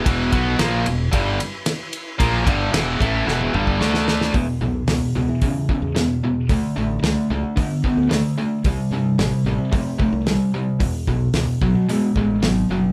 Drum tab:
RD |x-x-x-x-x-x-x-x-|x-x-x-x---------|----------------|----------------|
HH |----------------|----------------|o---o---o---o---|o---o---o---o---|
SD |----o-------o---|----o---o---oooo|----o-------o---|----o-------o---|
T1 |----------------|---------o------|----------------|----------------|
T2 |----------------|----------o-----|----------------|----------------|
BD |o-o-----o-------|o-o---o----o----|o-------o-o-----|o-------o-o-----|

RD |----------------|----------------|
HH |o---o---o---o---|o---o---o---o---|
SD |----o-------o---|----o-------o---|
T1 |----------------|----------------|
T2 |----------------|----------------|
BD |o-------o-o-----|o-o---o---o-----|